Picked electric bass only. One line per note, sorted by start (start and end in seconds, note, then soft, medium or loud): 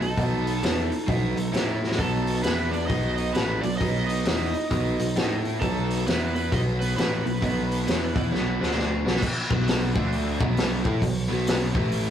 0.00 0.16 B1 medium
0.17 0.60 B1 medium
0.63 0.89 E2 medium
1.08 1.35 B1 medium
1.36 1.52 B1 medium
1.53 1.95 A2 medium
1.99 2.41 B1 medium
2.44 2.86 E2 medium
2.90 3.32 B1 medium
3.35 3.62 A1 medium
3.63 3.79 B1 medium
3.81 4.23 B1 medium
4.26 4.52 E2 medium
4.71 4.98 B1 medium
4.99 5.15 B1 medium
5.16 5.58 A2 medium
5.61 6.03 B1 medium
6.07 6.49 E2 medium
6.52 6.94 B1 medium
6.97 7.23 A1 medium
7.25 7.41 B1 medium
7.42 7.84 B1 medium
7.87 8.14 E2 medium
8.16 8.31 E2 medium
8.32 8.58 B1 medium
8.60 9.02 D2 medium
9.05 9.21 B1 medium
9.51 9.92 B1 medium
9.96 10.37 D2 loud
10.41 10.82 B1 loud
10.85 11.01 A2 medium
11.02 11.28 B1 medium
11.30 11.72 B1 medium
11.75 12.10 A1 loud